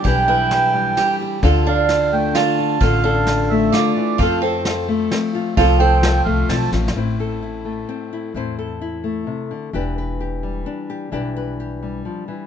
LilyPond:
<<
  \new Staff \with { instrumentName = "Accordion" } { \time 3/4 \key a \minor \tempo 4 = 130 g''2~ g''8 r8 | r8 f''4 g''8 a''4 | f''4. e''8 d''4 | f''8 r2 r8 |
a''8 g''4 f''8 a''8 r8 | r2. | r2. | r2. |
r2. | }
  \new Staff \with { instrumentName = "Steel-string acoustic guitar" } { \time 3/4 \key a \minor g'8 e'4 r8 g'4 | f'8 d'4 r8 f'4 | f'8 d'4 r8 f'4 | f'8 c'4 r4. |
f'8 c'4 r4. | r2. | r2. | r2. |
r2. | }
  \new Staff \with { instrumentName = "Nylon-string guitar" } { \time 3/4 \key a \minor << { <d' g' b'>8 b'8 g'4 d'8 g'8 | <d' f' a'>8 a'8 f'4 d'8 f'8 | <d' f' a'>8 a'8 f'2 | <c' f' a'>8 a'8 f'4 c'8 f'8 |
<c' f' a'>8 a'8 f'4 c'8 f'8 | <c' e' c''>8 a'8 e'4 c'8 e'8 | <c' e' c''>8 a'8 e'2 | <d' g' b'>8 b'8 g'4 d'8 g'8 |
<d' g' b'>8 b'8 g'2 | } \\ { <e g>4. g4. | d4. a4. | d4. a8 d8 e8 | f4. a4. |
f4. a4. | a,4. a4. | a,4. a8 c8 d8 | e4. g4. |
e4. g8 f8 e8 | } >> }
  \new Staff \with { instrumentName = "Upright bass" } { \clef bass \time 3/4 \key a \minor b,,2 r4 | d,2 r4 | a,,2 r4 | f,2 r4 |
c,4. c,8 b,,8 a,,8 | a,,2 r4 | e,2 r4 | e,,2 r4 |
b,,2 r4 | }
  \new DrumStaff \with { instrumentName = "Drums" } \drummode { \time 3/4 <bd cymr>4 <cymr sn>4 <cymr sn>4 | <bd cymr>4 <cymr sn>4 <cymr sn>4 | <bd cymr>4 <cymr sn>4 <cymr sn>4 | <bd cymr>4 <cymr sn>4 <cymr sn>4 |
<bd cymr>4 <cymr sn>4 \tuplet 3/2 { <cymr sn>16 r16 r16 sn16 r16 sn16 } | r4 r4 r4 | r4 r4 r4 | r4 r4 r4 |
r4 r4 r4 | }
>>